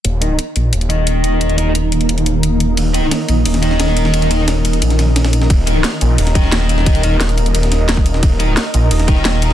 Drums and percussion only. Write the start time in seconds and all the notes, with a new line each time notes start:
0.05 closed hi-hat
0.22 closed hi-hat
0.39 closed hi-hat
0.56 closed hi-hat
0.73 closed hi-hat
0.81 closed hi-hat
0.90 closed hi-hat
1.07 closed hi-hat
1.24 closed hi-hat
1.41 closed hi-hat
1.49 closed hi-hat
1.58 closed hi-hat
1.75 closed hi-hat
1.92 closed hi-hat
2.01 closed hi-hat
2.09 closed hi-hat
2.18 closed hi-hat
2.26 closed hi-hat
2.43 closed hi-hat
2.60 closed hi-hat
2.77 closed hi-hat, ride
2.94 closed hi-hat, ride
3.11 snare, closed hi-hat, ride
3.29 closed hi-hat, ride
3.46 closed hi-hat, open hi-hat
3.54 snare, closed hi-hat
3.63 closed hi-hat, ride
3.71 snare
3.80 snare, closed hi-hat, ride
3.88 snare
3.97 closed hi-hat, ride
4.05 snare
4.14 closed hi-hat, ride
4.22 closed hi-hat
4.31 closed hi-hat, ride
4.48 snare, closed hi-hat, ride
4.65 closed hi-hat, ride
4.73 closed hi-hat
4.82 closed hi-hat, ride
4.90 snare, closed hi-hat
4.99 snare, closed hi-hat, ride
5.16 snare, closed hi-hat, ride
5.25 snare, ride
5.33 closed hi-hat, ride
5.42 snare
5.50 kick, closed hi-hat, ride
5.67 closed hi-hat, ride
5.84 snare, closed hi-hat, ride
6.01 closed hi-hat, ride
6.18 closed hi-hat, open hi-hat
6.27 snare, closed hi-hat
6.35 kick, closed hi-hat, ride
6.44 snare
6.52 snare, closed hi-hat, ride
6.61 snare
6.69 closed hi-hat, ride
6.78 snare
6.86 kick, closed hi-hat, ride
6.95 closed hi-hat
7.03 closed hi-hat, ride
7.21 snare, closed hi-hat, ride
7.29 closed hi-hat
7.38 closed hi-hat, ride
7.46 closed hi-hat
7.55 closed hi-hat, ride
7.63 snare, closed hi-hat
7.72 snare, closed hi-hat, ride
7.89 snare, closed hi-hat, ride
7.97 kick
8.06 closed hi-hat, ride
8.14 snare
8.23 kick, closed hi-hat, ride
8.40 closed hi-hat, ride
8.57 snare, closed hi-hat, ride
8.74 closed hi-hat, ride
8.91 closed hi-hat, open hi-hat
8.99 snare, closed hi-hat
9.08 kick, closed hi-hat, ride
9.17 snare
9.25 snare, closed hi-hat, ride
9.34 snare
9.42 closed hi-hat, ride